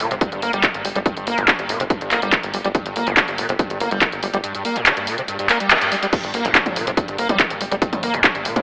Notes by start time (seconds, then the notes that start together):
0.00 A#2, open hi-hat
0.11 G1 C3, closed hi-hat
0.21 G2, kick, closed hi-hat
0.32 G1 G2, closed hi-hat
0.42 G1 A#3, open hi-hat
0.53 G1 G3, closed hi-hat
0.63 D3, kick, clap, closed hi-hat
0.74 G1 G2, closed hi-hat
0.84 G1 G3, open hi-hat
0.95 G1 G3, closed hi-hat
1.06 G2, kick, closed hi-hat
1.16 G1 G2, closed hi-hat
1.27 G1 A#3, open hi-hat
1.38 G1 G2, closed hi-hat
1.48 D3, kick, clap, closed hi-hat
1.59 G1 G2, closed hi-hat
1.69 G1 A#2, open hi-hat
1.80 G1 C3, closed hi-hat
1.90 G2, kick, closed hi-hat
2.01 G1 G2, closed hi-hat
2.11 G1 A#3, clap, open hi-hat
2.22 G1 G3, closed hi-hat
2.32 D3, kick, clap, closed hi-hat
2.43 G1 G2, closed hi-hat
2.54 G1 G3, open hi-hat
2.64 G1 G3, closed hi-hat
2.75 G2, kick, closed hi-hat
2.86 G1 G2, closed hi-hat
2.96 G1 A#3, open hi-hat
3.07 G1 G2, closed hi-hat
3.17 D3, kick, clap, closed hi-hat
3.28 G1 G2, closed hi-hat
3.38 G1 A#2, open hi-hat
3.49 G1 C3, closed hi-hat
3.59 G2, kick, closed hi-hat
3.70 G1 G2, closed hi-hat
3.80 G1 A#3, open hi-hat
3.91 G1 G3, closed hi-hat
4.01 D3, kick, clap, closed hi-hat
4.12 G1 G2, closed hi-hat
4.23 G1 G3, open hi-hat
4.33 G1 G3, closed hi-hat
4.44 G2, closed hi-hat
4.54 G2, closed hi-hat
4.65 A#3, open hi-hat
4.76 G2, closed hi-hat
4.86 D3, clap, closed hi-hat
4.97 G2, closed hi-hat
5.07 A#2, open hi-hat
5.18 C3, closed hi-hat
5.28 G2, closed hi-hat
5.39 G2, closed hi-hat
5.49 A#3, clap, open hi-hat
5.60 G3, closed hi-hat
5.70 D3, clap, closed hi-hat
5.81 G2, closed hi-hat
5.92 G3, open hi-hat
6.02 G3, closed hi-hat
6.13 G2, kick, closed hi-hat, crash
6.24 G1 G2, closed hi-hat
6.34 G1 A#3, open hi-hat
6.45 G1 G2, closed hi-hat
6.55 D3, kick, clap, closed hi-hat
6.66 G1 G2, closed hi-hat, mid tom
6.76 G1 A#2, open hi-hat
6.87 G1 C3, closed hi-hat
6.97 G2, kick, closed hi-hat
7.08 G1 G2, closed hi-hat
7.18 G1 A#3, open hi-hat
7.29 G1 G3, closed hi-hat, mid tom
7.39 D3, kick, clap, closed hi-hat
7.50 G1 G2, closed hi-hat
7.61 G1 G3, open hi-hat
7.71 G1 G3, closed hi-hat
7.82 G2, kick, closed hi-hat
7.92 G1 G2, closed hi-hat, mid tom
8.03 G1 A#3, open hi-hat
8.14 G1 G2, closed hi-hat
8.24 D3, kick, clap, closed hi-hat
8.35 G1 G2, closed hi-hat
8.45 G1 A#2, open hi-hat
8.56 G1 C3, closed hi-hat, mid tom